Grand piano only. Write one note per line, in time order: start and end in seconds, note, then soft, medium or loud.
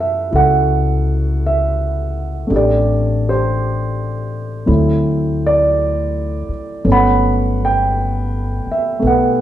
0.00 2.45 A3 soft
0.00 2.52 C#4 soft
0.00 0.29 E4 soft
0.00 1.46 E5 medium
0.00 0.36 F#5 medium
0.00 2.53 A5 medium
0.31 2.50 E4 soft
0.31 2.51 F#4 soft
0.31 2.52 A4 soft
0.36 1.39 F#5 medium
1.46 2.56 E5 medium
2.47 4.65 A3 soft
2.47 4.65 C4 soft
2.47 4.68 D4 soft
2.52 2.55 G4 soft
2.52 3.29 D5 medium
2.56 3.27 G4 soft
3.29 4.67 G4 soft
3.29 5.50 C5 medium
4.66 6.83 F#3 soft
4.66 6.83 A3 soft
4.66 6.85 C4 soft
4.66 6.85 E4 soft
5.47 6.49 D5 medium
6.84 9.41 F#3 soft
6.84 8.98 A3 soft
6.84 9.01 B3 soft
6.84 9.41 C#4 soft
6.92 9.01 F#5 medium
6.92 7.64 B5 medium
7.65 8.66 G5 medium
8.71 9.02 E5 medium
8.99 9.41 A3 soft
8.99 9.41 B3 soft
9.07 9.41 B4 medium
9.07 9.41 F#5 medium